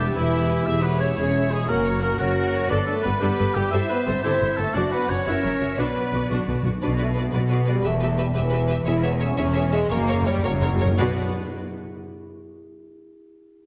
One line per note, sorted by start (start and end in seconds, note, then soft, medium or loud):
0.00 0.10 E1 medium
0.00 0.10 E2 medium
0.00 0.16 G3 medium
0.00 0.16 B3 soft
0.00 0.15 D4 medium
0.00 0.15 G4 medium
0.00 0.16 G4 soft
0.00 0.15 E5 soft
0.15 0.61 E1 medium
0.15 0.60 E2 medium
0.15 0.66 E3 medium
0.15 0.68 E4 medium
0.15 0.66 E4 medium
0.15 0.33 E4 soft
0.15 1.16 G4 medium
0.15 0.32 B4 soft
0.32 0.49 B3 soft
0.32 0.49 G4 soft
0.32 0.48 E5 soft
0.48 0.66 E4 soft
0.48 0.66 B4 soft
0.65 1.12 E1 medium
0.65 1.12 E2 medium
0.65 0.84 E4 medium
0.65 0.83 E4 soft
0.65 0.83 G#4 soft
0.65 0.82 E5 soft
0.65 0.84 E5 medium
0.65 0.83 E5 medium
0.82 1.00 B3 medium
0.82 1.00 E4 soft
0.82 1.00 G#4 soft
0.82 0.99 B4 medium
0.82 1.00 B4 medium
0.82 1.00 C#5 soft
0.99 1.15 C#4 medium
0.99 1.17 E4 soft
0.99 1.17 G#4 soft
0.99 1.08 C#5 medium
0.99 1.16 C#5 soft
0.99 1.17 E5 soft
1.16 1.63 E1 medium
1.16 1.62 E2 medium
1.16 1.50 C#4 medium
1.16 1.35 E4 soft
1.16 1.70 G#4 medium
1.16 1.35 G#4 soft
1.16 1.34 C#5 soft
1.16 1.51 C#5 medium
1.16 1.53 C#5 medium
1.34 1.51 E4 soft
1.34 1.51 G#4 soft
1.34 1.50 E5 soft
1.50 1.68 G#3 medium
1.50 1.69 E4 soft
1.50 1.68 G#4 medium
1.50 1.70 G#4 medium
1.50 1.69 G#4 soft
1.50 1.68 C#5 soft
1.68 2.14 F#1 medium
1.68 2.13 F#2 medium
1.68 2.01 A#3 medium
1.68 1.85 C#4 soft
1.68 2.20 F#4 medium
1.68 2.01 A#4 medium
1.68 1.84 A#4 soft
1.68 2.01 A#4 medium
1.68 1.84 F#5 soft
1.85 2.03 F#4 soft
1.85 2.02 C#5 soft
1.85 2.03 C#5 soft
2.02 2.10 A#3 medium
2.02 2.19 C#4 soft
2.02 2.18 A#4 medium
2.02 2.19 A#4 medium
2.02 2.19 A#4 soft
2.02 2.19 F#5 soft
2.18 2.65 F#1 medium
2.18 2.64 F#2 medium
2.18 2.69 F#3 medium
2.18 2.68 F#4 medium
2.18 2.69 F#4 medium
2.18 2.37 F#4 soft
2.18 2.72 A#4 medium
2.18 2.37 C#5 soft
2.36 2.52 C#4 soft
2.36 2.52 A#4 soft
2.36 2.52 F#5 soft
2.53 2.70 F#4 medium
2.53 2.71 C#5 soft
2.68 2.78 G1 medium
2.68 2.77 G2 medium
2.68 2.77 D4 medium
2.68 2.86 D4 medium
2.68 2.86 A4 medium
2.68 3.19 B4 medium
2.68 3.68 B4 soft
2.68 2.86 D5 medium
2.86 3.04 A3 medium
2.86 2.94 A4 medium
2.86 3.04 A4 medium
3.03 3.12 G1 soft
3.03 3.11 G2 soft
3.03 3.12 B3 medium
3.03 3.11 G4 soft
3.03 3.11 A4 soft
3.03 3.20 B4 medium
3.20 3.29 G1 medium
3.20 3.28 G2 medium
3.20 3.55 B3 medium
3.20 3.37 D4 medium
3.20 3.75 G4 medium
3.20 3.37 A4 medium
3.20 3.56 B4 medium
3.20 3.54 B4 medium
3.38 3.46 G1 soft
3.38 3.45 G2 soft
3.38 3.46 A4 soft
3.55 3.62 G1 soft
3.55 3.62 G2 soft
3.55 3.73 G3 medium
3.55 3.71 G4 medium
3.55 3.62 G4 medium
3.55 3.73 G4 medium
3.55 3.62 A4 medium
3.71 3.79 G1 medium
3.71 3.79 G2 medium
3.71 3.90 E4 medium
3.71 3.89 G4 medium
3.71 3.88 A4 medium
3.71 4.23 C5 medium
3.71 3.79 E5 medium
3.71 3.89 E5 medium
3.71 4.75 E5 soft
3.89 4.07 B3 medium
3.89 4.06 B4 medium
3.89 3.97 B4 medium
4.07 4.14 G1 soft
4.07 4.13 G2 soft
4.07 4.24 C4 medium
4.07 4.14 A4 medium
4.07 4.22 C5 medium
4.07 4.23 C5 medium
4.23 4.31 G1 medium
4.23 4.30 G2 medium
4.23 4.58 C4 medium
4.23 4.60 E4 medium
4.23 4.40 G4 medium
4.23 4.40 A4 medium
4.23 4.58 C5 medium
4.23 4.57 C5 medium
4.41 4.48 G1 soft
4.41 4.48 G2 soft
4.41 4.48 A4 soft
4.41 4.48 C5 soft
4.57 4.65 G1 soft
4.57 4.65 G2 soft
4.57 4.76 A3 medium
4.57 4.76 A4 medium
4.57 4.74 A4 medium
4.57 4.65 A4 soft
4.74 4.82 F#1 medium
4.74 4.82 F#2 medium
4.74 4.91 D4 medium
4.74 4.93 D4 medium
4.74 4.91 F#4 medium
4.74 5.08 F#4 medium
4.74 4.91 D5 medium
4.74 4.92 D5 medium
4.74 5.26 F#5 soft
4.91 5.09 B3 medium
4.91 5.11 B4 medium
4.91 5.10 B4 medium
5.09 5.16 F#1 soft
5.09 5.16 F#2 soft
5.09 5.27 C#4 medium
5.09 5.16 F#4 soft
5.09 5.26 C#5 medium
5.09 5.25 C#5 medium
5.26 5.34 F#1 medium
5.26 5.33 F#2 medium
5.26 5.65 C#4 medium
5.26 5.42 E4 medium
5.26 5.42 F#4 medium
5.26 5.75 A#4 medium
5.26 5.59 C#5 medium
5.26 5.78 C#5 medium
5.26 5.79 E5 soft
5.44 5.51 F#1 soft
5.44 5.51 F#2 soft
5.44 5.51 F#4 soft
5.44 5.51 A#4 soft
5.61 5.68 F#1 soft
5.61 5.68 F#2 soft
5.61 5.68 F#4 soft
5.77 5.86 B1 medium
5.77 5.85 B2 medium
5.77 5.85 B2 soft
5.77 6.30 B3 medium
5.77 5.94 D4 soft
5.77 5.94 F#4 soft
5.77 6.55 B4 medium
5.77 6.31 B4 soft
5.77 6.27 B4 soft
5.77 6.65 D5 soft
5.86 5.93 B2 soft
5.94 6.00 B2 soft
6.01 6.09 B2 soft
6.10 6.15 B2 soft
6.10 6.20 B2 soft
6.14 6.21 B1 soft
6.14 6.23 B2 soft
6.14 6.21 F#4 soft
6.24 6.31 B2 soft
6.30 6.38 B1 soft
6.30 6.38 B2 soft
6.30 6.47 D4 soft
6.30 6.47 F#4 soft
6.39 6.45 B2 soft
6.46 6.55 B1 soft
6.46 6.53 B2 medium
6.46 6.55 B2 soft
6.46 6.55 F#4 soft
6.46 6.55 B4 soft
6.54 6.61 B2 medium
6.62 6.73 B1 soft
6.62 6.69 B2 medium
6.62 6.72 B2 soft
6.62 6.72 F#4 soft
6.70 6.77 B2 medium
6.82 7.28 B1 medium
6.82 7.28 B2 medium
6.82 6.90 D4 medium
6.82 6.89 F#4 soft
6.82 6.89 B4 soft
6.82 6.90 D5 soft
6.97 7.07 A3 medium
6.97 7.06 F#4 soft
6.97 7.05 B4 soft
6.97 7.06 D5 soft
7.14 7.33 B3 medium
7.14 7.23 F#4 soft
7.14 7.21 B4 soft
7.14 7.24 D5 soft
7.31 7.79 B1 medium
7.31 7.79 B2 medium
7.31 7.67 B3 medium
7.31 7.40 F#4 soft
7.31 7.38 B4 medium
7.31 7.41 D5 soft
7.48 7.57 F#4 soft
7.48 7.56 B4 soft
7.48 7.58 D5 soft
7.64 7.75 F#4 soft
7.64 7.72 B4 soft
7.64 7.74 D5 soft
7.68 7.85 G3 medium
7.81 8.30 E1 medium
7.81 7.91 G4 medium
7.81 7.89 B4 soft
7.81 7.92 E5 soft
7.86 8.30 E2 medium
7.86 8.19 A3 medium
7.99 8.09 G4 soft
7.99 8.07 B4 soft
7.99 8.09 E5 soft
8.17 8.27 G3 medium
8.17 8.25 G4 soft
8.17 8.24 B4 medium
8.17 8.27 E5 medium
8.34 8.81 E1 medium
8.34 8.81 E2 medium
8.34 8.86 E3 medium
8.34 8.42 G4 medium
8.34 8.41 B4 medium
8.34 8.43 E5 medium
8.49 8.59 G4 medium
8.49 8.57 B4 medium
8.54 8.60 E5 medium
8.67 8.76 G4 medium
8.67 8.74 B4 medium
8.67 8.77 E5 medium
8.85 9.32 E1 medium
8.85 9.32 E2 medium
8.85 9.03 E4 loud
8.85 8.93 G#4 medium
8.85 8.92 C#5 medium
8.85 8.94 E5 medium
9.03 9.11 B3 loud
9.03 9.10 G#4 medium
9.03 9.10 C#5 medium
9.03 9.11 E5 medium
9.19 9.36 C#4 medium
9.19 9.27 G#4 medium
9.19 9.26 C#5 medium
9.19 9.29 E5 medium
9.37 9.84 E1 medium
9.37 9.84 E2 medium
9.37 9.72 C#4 loud
9.37 9.45 G#4 medium
9.37 9.44 C#5 medium
9.37 9.45 E5 medium
9.54 9.62 G#4 medium
9.54 9.62 C#5 medium
9.54 9.61 E5 medium
9.72 9.90 G#3 loud
9.72 9.80 G#4 medium
9.72 9.80 C#5 medium
9.72 9.79 E5 medium
9.90 10.38 F#1 medium
9.90 10.37 F#2 loud
9.90 9.97 F#2 soft
9.90 10.25 A#3 loud
9.90 9.98 A#4 medium
9.90 9.97 C#5 medium
9.98 10.05 F#2 soft
10.06 10.12 F#2 soft
10.06 10.16 A#4 medium
10.06 10.15 C#5 medium
10.14 10.20 F#2 medium
10.21 10.29 F#2 medium
10.25 10.44 G3 loud
10.25 10.34 A#4 medium
10.25 10.33 C#5 medium
10.30 10.36 F#2 medium
10.37 10.43 F#2 medium
10.43 10.92 F#1 medium
10.43 10.92 F#2 medium
10.43 10.52 F#2 medium
10.43 10.98 F#3 medium
10.43 10.51 A#4 medium
10.43 10.51 C#5 medium
10.43 10.52 C#5 medium
10.53 10.60 F#2 medium
10.61 10.68 F#2 medium
10.61 10.70 A#4 medium
10.61 10.69 C#5 medium
10.61 10.70 C#5 medium
10.69 10.76 F#2 medium
10.77 10.84 F#2 medium
10.77 10.88 A#4 medium
10.77 10.87 C#5 medium
10.85 10.93 F#2 loud
10.97 11.19 B1 medium
10.97 11.19 B2 loud
10.97 11.15 B2 loud
10.97 11.13 B3 loud
10.97 11.19 F#4 medium
10.97 11.19 B4 medium
10.97 11.18 D5 medium